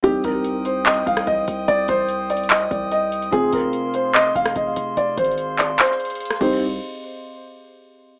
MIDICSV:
0, 0, Header, 1, 6, 480
1, 0, Start_track
1, 0, Key_signature, -3, "minor"
1, 0, Tempo, 410959
1, 46, Time_signature, 4, 2, 24, 8
1, 9574, End_track
2, 0, Start_track
2, 0, Title_t, "Glass harmonica"
2, 0, Program_c, 0, 92
2, 44, Note_on_c, 0, 87, 79
2, 45, Note_on_c, 0, 72, 71
2, 45, Note_on_c, 0, 79, 68
2, 3847, Note_off_c, 0, 72, 0
2, 3847, Note_off_c, 0, 79, 0
2, 3847, Note_off_c, 0, 87, 0
2, 3883, Note_on_c, 0, 84, 81
2, 3884, Note_on_c, 0, 68, 71
2, 3885, Note_on_c, 0, 77, 68
2, 7449, Note_off_c, 0, 68, 0
2, 7449, Note_off_c, 0, 84, 0
2, 7450, Note_off_c, 0, 77, 0
2, 7486, Note_on_c, 0, 60, 68
2, 7486, Note_on_c, 0, 67, 63
2, 7486, Note_on_c, 0, 75, 76
2, 7709, Note_off_c, 0, 60, 0
2, 7709, Note_off_c, 0, 67, 0
2, 7709, Note_off_c, 0, 75, 0
2, 9574, End_track
3, 0, Start_track
3, 0, Title_t, "Grand piano"
3, 0, Program_c, 1, 0
3, 43, Note_on_c, 1, 67, 110
3, 252, Note_off_c, 1, 67, 0
3, 286, Note_on_c, 1, 70, 86
3, 737, Note_off_c, 1, 70, 0
3, 763, Note_on_c, 1, 72, 74
3, 972, Note_off_c, 1, 72, 0
3, 1004, Note_on_c, 1, 75, 87
3, 1213, Note_off_c, 1, 75, 0
3, 1248, Note_on_c, 1, 77, 82
3, 1455, Note_off_c, 1, 77, 0
3, 1486, Note_on_c, 1, 75, 89
3, 1937, Note_off_c, 1, 75, 0
3, 1963, Note_on_c, 1, 74, 108
3, 2172, Note_off_c, 1, 74, 0
3, 2205, Note_on_c, 1, 72, 96
3, 2656, Note_off_c, 1, 72, 0
3, 2688, Note_on_c, 1, 74, 81
3, 2895, Note_off_c, 1, 74, 0
3, 2927, Note_on_c, 1, 75, 83
3, 3134, Note_off_c, 1, 75, 0
3, 3167, Note_on_c, 1, 74, 71
3, 3374, Note_off_c, 1, 74, 0
3, 3409, Note_on_c, 1, 75, 82
3, 3859, Note_off_c, 1, 75, 0
3, 3883, Note_on_c, 1, 68, 104
3, 4092, Note_off_c, 1, 68, 0
3, 4126, Note_on_c, 1, 70, 79
3, 4577, Note_off_c, 1, 70, 0
3, 4607, Note_on_c, 1, 72, 80
3, 4814, Note_off_c, 1, 72, 0
3, 4843, Note_on_c, 1, 75, 97
3, 5052, Note_off_c, 1, 75, 0
3, 5087, Note_on_c, 1, 77, 86
3, 5294, Note_off_c, 1, 77, 0
3, 5330, Note_on_c, 1, 75, 72
3, 5779, Note_off_c, 1, 75, 0
3, 5806, Note_on_c, 1, 74, 89
3, 6014, Note_off_c, 1, 74, 0
3, 6045, Note_on_c, 1, 72, 89
3, 6497, Note_off_c, 1, 72, 0
3, 6526, Note_on_c, 1, 74, 80
3, 6734, Note_off_c, 1, 74, 0
3, 6768, Note_on_c, 1, 72, 93
3, 7444, Note_off_c, 1, 72, 0
3, 7486, Note_on_c, 1, 72, 86
3, 7709, Note_off_c, 1, 72, 0
3, 9574, End_track
4, 0, Start_track
4, 0, Title_t, "Felt piano"
4, 0, Program_c, 2, 0
4, 29, Note_on_c, 2, 60, 72
4, 47, Note_on_c, 2, 63, 64
4, 64, Note_on_c, 2, 67, 74
4, 290, Control_c, 2, 64, 127
4, 3831, Note_off_c, 2, 60, 0
4, 3839, Note_off_c, 2, 63, 0
4, 3848, Note_off_c, 2, 67, 0
4, 3867, Note_on_c, 2, 60, 72
4, 3884, Note_on_c, 2, 65, 61
4, 3898, Control_c, 2, 64, 0
4, 3902, Note_on_c, 2, 68, 70
4, 4122, Control_c, 2, 64, 127
4, 7430, Note_off_c, 2, 60, 0
4, 7438, Note_off_c, 2, 65, 0
4, 7447, Note_off_c, 2, 68, 0
4, 7487, Note_on_c, 2, 60, 84
4, 7487, Note_on_c, 2, 63, 78
4, 7487, Note_on_c, 2, 67, 93
4, 7502, Control_c, 2, 64, 0
4, 7601, Control_c, 2, 64, 127
4, 7709, Note_off_c, 2, 60, 0
4, 7709, Note_off_c, 2, 63, 0
4, 7709, Note_off_c, 2, 67, 0
4, 7741, Control_c, 2, 64, 0
4, 9574, End_track
5, 0, Start_track
5, 0, Title_t, "808-style bass"
5, 0, Program_c, 3, 38
5, 46, Note_on_c, 3, 36, 114
5, 276, Note_off_c, 3, 36, 0
5, 285, Note_on_c, 3, 36, 111
5, 1207, Note_off_c, 3, 36, 0
5, 1246, Note_on_c, 3, 36, 106
5, 1476, Note_off_c, 3, 36, 0
5, 1486, Note_on_c, 3, 36, 109
5, 1716, Note_off_c, 3, 36, 0
5, 1727, Note_on_c, 3, 36, 108
5, 1957, Note_off_c, 3, 36, 0
5, 1967, Note_on_c, 3, 36, 113
5, 2197, Note_off_c, 3, 36, 0
5, 2204, Note_on_c, 3, 36, 111
5, 3127, Note_off_c, 3, 36, 0
5, 3165, Note_on_c, 3, 36, 112
5, 3857, Note_off_c, 3, 36, 0
5, 3885, Note_on_c, 3, 29, 117
5, 4116, Note_off_c, 3, 29, 0
5, 4124, Note_on_c, 3, 29, 111
5, 5046, Note_off_c, 3, 29, 0
5, 5086, Note_on_c, 3, 29, 108
5, 5316, Note_off_c, 3, 29, 0
5, 5325, Note_on_c, 3, 29, 111
5, 5556, Note_off_c, 3, 29, 0
5, 5567, Note_on_c, 3, 29, 108
5, 5797, Note_off_c, 3, 29, 0
5, 5805, Note_on_c, 3, 29, 113
5, 6036, Note_off_c, 3, 29, 0
5, 6044, Note_on_c, 3, 32, 110
5, 6736, Note_off_c, 3, 32, 0
5, 7484, Note_on_c, 3, 36, 107
5, 7931, Note_off_c, 3, 36, 0
5, 9574, End_track
6, 0, Start_track
6, 0, Title_t, "Drums"
6, 45, Note_on_c, 9, 42, 85
6, 46, Note_on_c, 9, 36, 124
6, 162, Note_off_c, 9, 36, 0
6, 162, Note_off_c, 9, 42, 0
6, 279, Note_on_c, 9, 42, 87
6, 285, Note_on_c, 9, 36, 92
6, 395, Note_off_c, 9, 42, 0
6, 402, Note_off_c, 9, 36, 0
6, 518, Note_on_c, 9, 42, 84
6, 635, Note_off_c, 9, 42, 0
6, 761, Note_on_c, 9, 42, 79
6, 877, Note_off_c, 9, 42, 0
6, 1005, Note_on_c, 9, 39, 125
6, 1010, Note_on_c, 9, 42, 72
6, 1122, Note_off_c, 9, 39, 0
6, 1127, Note_off_c, 9, 42, 0
6, 1246, Note_on_c, 9, 36, 98
6, 1248, Note_on_c, 9, 42, 78
6, 1363, Note_off_c, 9, 36, 0
6, 1365, Note_off_c, 9, 42, 0
6, 1365, Note_on_c, 9, 37, 99
6, 1482, Note_off_c, 9, 37, 0
6, 1484, Note_on_c, 9, 42, 73
6, 1486, Note_on_c, 9, 36, 89
6, 1600, Note_off_c, 9, 42, 0
6, 1603, Note_off_c, 9, 36, 0
6, 1725, Note_on_c, 9, 42, 87
6, 1842, Note_off_c, 9, 42, 0
6, 1965, Note_on_c, 9, 42, 82
6, 2082, Note_off_c, 9, 42, 0
6, 2198, Note_on_c, 9, 42, 87
6, 2205, Note_on_c, 9, 36, 92
6, 2315, Note_off_c, 9, 42, 0
6, 2321, Note_off_c, 9, 36, 0
6, 2437, Note_on_c, 9, 42, 81
6, 2554, Note_off_c, 9, 42, 0
6, 2684, Note_on_c, 9, 42, 79
6, 2765, Note_off_c, 9, 42, 0
6, 2765, Note_on_c, 9, 42, 63
6, 2844, Note_off_c, 9, 42, 0
6, 2844, Note_on_c, 9, 42, 47
6, 2924, Note_on_c, 9, 39, 124
6, 2929, Note_off_c, 9, 42, 0
6, 2929, Note_on_c, 9, 42, 72
6, 3041, Note_off_c, 9, 39, 0
6, 3046, Note_off_c, 9, 42, 0
6, 3166, Note_on_c, 9, 36, 97
6, 3169, Note_on_c, 9, 42, 77
6, 3282, Note_off_c, 9, 36, 0
6, 3285, Note_off_c, 9, 42, 0
6, 3403, Note_on_c, 9, 42, 77
6, 3519, Note_off_c, 9, 42, 0
6, 3645, Note_on_c, 9, 42, 81
6, 3761, Note_off_c, 9, 42, 0
6, 3763, Note_on_c, 9, 42, 48
6, 3880, Note_off_c, 9, 42, 0
6, 3883, Note_on_c, 9, 42, 81
6, 3885, Note_on_c, 9, 36, 125
6, 4000, Note_off_c, 9, 42, 0
6, 4002, Note_off_c, 9, 36, 0
6, 4118, Note_on_c, 9, 42, 86
6, 4124, Note_on_c, 9, 36, 94
6, 4235, Note_off_c, 9, 42, 0
6, 4241, Note_off_c, 9, 36, 0
6, 4357, Note_on_c, 9, 42, 83
6, 4473, Note_off_c, 9, 42, 0
6, 4600, Note_on_c, 9, 42, 76
6, 4717, Note_off_c, 9, 42, 0
6, 4844, Note_on_c, 9, 39, 125
6, 4849, Note_on_c, 9, 42, 74
6, 4961, Note_off_c, 9, 39, 0
6, 4966, Note_off_c, 9, 42, 0
6, 5086, Note_on_c, 9, 36, 95
6, 5089, Note_on_c, 9, 42, 79
6, 5203, Note_off_c, 9, 36, 0
6, 5204, Note_on_c, 9, 37, 102
6, 5206, Note_off_c, 9, 42, 0
6, 5321, Note_off_c, 9, 37, 0
6, 5322, Note_on_c, 9, 42, 76
6, 5325, Note_on_c, 9, 36, 86
6, 5439, Note_off_c, 9, 42, 0
6, 5442, Note_off_c, 9, 36, 0
6, 5563, Note_on_c, 9, 42, 88
6, 5680, Note_off_c, 9, 42, 0
6, 5804, Note_on_c, 9, 42, 82
6, 5921, Note_off_c, 9, 42, 0
6, 6045, Note_on_c, 9, 36, 96
6, 6045, Note_on_c, 9, 42, 88
6, 6126, Note_off_c, 9, 42, 0
6, 6126, Note_on_c, 9, 42, 72
6, 6161, Note_off_c, 9, 36, 0
6, 6206, Note_off_c, 9, 42, 0
6, 6206, Note_on_c, 9, 42, 52
6, 6280, Note_off_c, 9, 42, 0
6, 6280, Note_on_c, 9, 42, 84
6, 6396, Note_off_c, 9, 42, 0
6, 6521, Note_on_c, 9, 42, 76
6, 6526, Note_on_c, 9, 39, 87
6, 6638, Note_off_c, 9, 42, 0
6, 6643, Note_off_c, 9, 39, 0
6, 6766, Note_on_c, 9, 39, 119
6, 6766, Note_on_c, 9, 42, 59
6, 6846, Note_off_c, 9, 42, 0
6, 6846, Note_on_c, 9, 42, 61
6, 6883, Note_off_c, 9, 39, 0
6, 6925, Note_off_c, 9, 42, 0
6, 6925, Note_on_c, 9, 42, 63
6, 7006, Note_off_c, 9, 42, 0
6, 7006, Note_on_c, 9, 42, 49
6, 7066, Note_off_c, 9, 42, 0
6, 7066, Note_on_c, 9, 42, 60
6, 7126, Note_off_c, 9, 42, 0
6, 7126, Note_on_c, 9, 42, 70
6, 7185, Note_off_c, 9, 42, 0
6, 7185, Note_on_c, 9, 42, 81
6, 7245, Note_off_c, 9, 42, 0
6, 7245, Note_on_c, 9, 42, 77
6, 7305, Note_off_c, 9, 42, 0
6, 7305, Note_on_c, 9, 42, 65
6, 7364, Note_off_c, 9, 42, 0
6, 7364, Note_on_c, 9, 37, 85
6, 7364, Note_on_c, 9, 42, 56
6, 7424, Note_off_c, 9, 42, 0
6, 7424, Note_on_c, 9, 42, 44
6, 7481, Note_off_c, 9, 37, 0
6, 7484, Note_on_c, 9, 49, 90
6, 7485, Note_on_c, 9, 36, 109
6, 7541, Note_off_c, 9, 42, 0
6, 7601, Note_off_c, 9, 36, 0
6, 7601, Note_off_c, 9, 49, 0
6, 9574, End_track
0, 0, End_of_file